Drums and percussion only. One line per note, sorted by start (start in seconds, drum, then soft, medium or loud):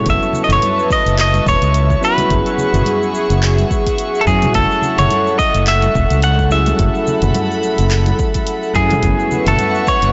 0.06 kick loud
0.06 closed hi-hat medium
0.06 cabasa soft
0.22 cabasa soft
0.33 low conga medium
0.33 cabasa medium
0.50 closed hi-hat soft
0.50 mid tom medium
0.50 cabasa soft
0.62 closed hi-hat medium
0.62 high conga loud
0.62 cabasa medium
0.79 cabasa soft
0.90 kick loud
0.90 cabasa medium
1.06 closed hi-hat soft
1.06 cabasa soft
1.18 clap medium
1.18 closed hi-hat medium
1.18 cabasa soft
1.34 closed hi-hat soft
1.34 high conga medium
1.34 cabasa soft
1.46 kick loud
1.46 cabasa medium
1.62 closed hi-hat soft
1.62 cabasa soft
1.74 closed hi-hat medium
1.74 cabasa soft
1.90 kick medium
1.90 cabasa soft
2.03 cabasa medium
2.18 closed hi-hat soft
2.18 high conga loud
2.18 low conga medium
2.18 cabasa soft
2.30 kick loud
2.30 closed hi-hat medium
2.30 cabasa soft
2.46 closed hi-hat soft
2.46 cabasa soft
2.58 low conga medium
2.58 cabasa medium
2.74 closed hi-hat soft
2.74 mid tom medium
2.74 cabasa soft
2.86 closed hi-hat medium
2.86 high conga medium
2.86 cabasa soft
3.03 cabasa soft
3.15 cabasa medium
3.30 closed hi-hat soft
3.30 cabasa soft
3.43 clap medium
3.43 closed hi-hat medium
3.43 cabasa soft
3.58 closed hi-hat soft
3.58 high conga medium
3.58 cabasa soft
3.71 kick loud
3.71 cabasa medium
3.87 kick medium
3.87 closed hi-hat soft
3.87 cabasa soft
3.98 closed hi-hat medium
3.98 cabasa soft
4.15 cabasa soft
4.27 kick loud
4.27 cabasa medium
4.42 closed hi-hat soft
4.42 mid tom medium
4.42 high conga loud
4.42 low conga medium
4.42 cabasa soft
4.54 kick loud
4.54 closed hi-hat medium
4.54 cabasa soft
4.71 cabasa soft
4.82 low conga medium
4.82 cabasa medium
4.98 closed hi-hat soft
4.98 mid tom medium
4.98 cabasa soft
5.10 closed hi-hat medium
5.10 high conga medium
5.10 cabasa soft
5.27 cabasa soft
5.39 kick loud
5.39 cabasa medium
5.54 closed hi-hat soft
5.54 cabasa soft
5.67 clap medium
5.67 closed hi-hat medium
5.67 cabasa soft
5.82 closed hi-hat soft
5.82 high conga medium
5.82 cabasa soft
5.95 kick loud
5.95 cabasa medium
6.10 closed hi-hat soft
6.10 cabasa soft
6.22 closed hi-hat medium
6.22 cabasa soft
6.39 kick medium
6.39 cabasa soft
6.51 cabasa medium
6.66 closed hi-hat soft
6.66 high conga medium
6.66 low conga medium
6.66 cabasa soft
6.79 kick loud
6.79 closed hi-hat medium
6.79 cabasa soft
6.95 cabasa soft
7.07 low conga medium
7.07 cabasa medium
7.22 closed hi-hat soft
7.22 mid tom medium
7.22 cabasa soft
7.35 closed hi-hat medium
7.35 high conga medium
7.35 cabasa soft
7.51 cabasa soft
7.63 cabasa medium
7.78 closed hi-hat soft
7.78 cabasa soft
7.91 clap medium
7.91 closed hi-hat medium
7.91 cabasa soft
8.06 closed hi-hat soft
8.06 high conga medium
8.06 cabasa soft
8.19 kick loud
8.19 cabasa medium
8.34 kick medium
8.34 closed hi-hat soft
8.34 cabasa soft
8.47 closed hi-hat medium
8.47 cabasa soft
8.63 cabasa soft
8.75 kick loud
8.75 cabasa medium
8.90 closed hi-hat soft
8.90 mid tom medium
8.90 high conga medium
8.90 low conga medium
8.90 cabasa soft
9.03 kick loud
9.03 closed hi-hat medium
9.03 cabasa soft
9.19 cabasa soft
9.31 low conga medium
9.31 cabasa medium
9.46 closed hi-hat soft
9.46 mid tom medium
9.46 cabasa soft
9.58 closed hi-hat medium
9.58 high conga medium
9.58 cabasa soft
9.75 cabasa soft
9.87 kick loud
9.87 cabasa medium
10.02 closed hi-hat soft
10.02 cabasa soft